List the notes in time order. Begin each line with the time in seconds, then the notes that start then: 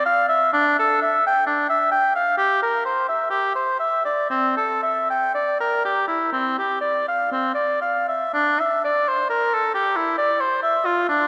0.06 F5
0.29 E5
0.53 D4
0.80 A4
1.03 E5
1.27 G5
1.47 D4
1.70 E5
1.92 G5
2.16 F5
2.38 G4
2.63 A#4
2.85 C5
3.09 E5
3.30 G4
3.56 C5
3.80 E5
4.05 D5
4.30 C4
4.57 A4
4.83 E5
5.10 G5
5.35 D5
5.60 A#4
5.85 G4
6.08 E4
6.33 C4
6.59 G4
6.81 D5
7.08 F5
7.32 C4
7.55 D5
7.81 F5
8.08 E5
8.33 D4
8.60 E5
8.85 D5
9.08 C5
9.30 A#4
9.54 A4
9.74 G4
9.96 E4
10.18 D5
10.41 C5
10.63 E5
10.86 F4
11.09 D4